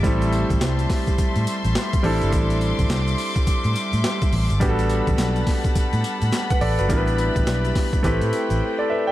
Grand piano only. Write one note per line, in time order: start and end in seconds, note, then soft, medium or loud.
0.03 1.99 G3 medium
0.03 2.00 A3 medium
0.03 2.00 C4 medium
0.03 2.00 E4 medium
0.03 2.01 A4 medium
2.03 4.28 G3 medium
2.03 4.28 C4 medium
2.03 4.29 D4 medium
2.03 4.29 E4 medium
2.03 4.29 A4 medium
4.60 6.57 G3 medium
4.60 6.57 B3 medium
4.60 6.57 D4 medium
4.60 6.30 F#4 medium
4.60 4.70 G4 medium
4.69 6.33 A4 medium
6.50 6.61 B4 medium
6.50 6.61 F#5 medium
6.61 6.78 A4 medium
6.61 6.78 D5 medium
6.79 7.06 F#4 medium
6.79 6.96 B4 medium
6.88 8.01 G3 medium
6.88 8.01 B3 medium
6.88 8.02 D4 medium
6.88 8.02 E4 medium
6.88 6.98 A#4 medium
6.97 8.04 B4 medium
8.03 9.12 A3 medium
8.03 9.12 C4 medium
8.03 9.12 E4 medium
8.03 9.12 G4 medium
8.03 8.33 B4 medium
8.79 8.89 A4 medium
8.79 8.89 D5 medium
8.90 9.07 B4 medium
8.90 9.06 E5 medium
9.07 9.12 D5 medium
9.07 9.12 G5 medium